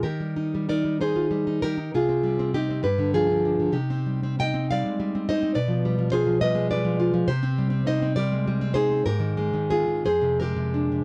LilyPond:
\new Staff \with { instrumentName = "Nylon-string guitar" } { \time 6/8 \key c \minor \tempo 4. = 66 << { <g' bes'>4 <bes' d''>8 <aes' c''>4 <g' bes'>8 | <f' aes'>4 <ees' g'>8 <g' ces''>8 <f' aes'>4 | <ees' g'>4 <ees'' g''>8 <d'' f''>4 <c'' ees''>8 | <b' d''>4 <aes' c''>8 <b' ees''>8 <b' d''>4 |
<g' c''>4 <c'' ees''>8 <bes' d''>4 <aes' c''>8 | <g' bes'>4 <f' aes'>8 <aes' c''>8 <g' bes'>4 | } \\ { ees16 g16 ees'16 g16 ees'16 g16 ees'16 f'16 g16 ees'16 g16 ees'16 | c16 c'16 g16 c'8 c'16 g,16 d16 f16 d16 d'16 d16 | c16 c'16 g16 c'16 ees'16 c'16 g16 aes16 g16 c'16 ees'16 c'16 | b,16 f16 g16 f16 f'16 f16 g16 aes16 g16 f16 f'16 f16 |
c16 c'16 g16 c'16 ees'16 c'16 g16 aes16 g16 c'16 ees'16 c'16 | aes,16 ees16 aes16 ees16 c'16 ees16 f,16 c16 aes16 c16 d'16 c16 | } >> }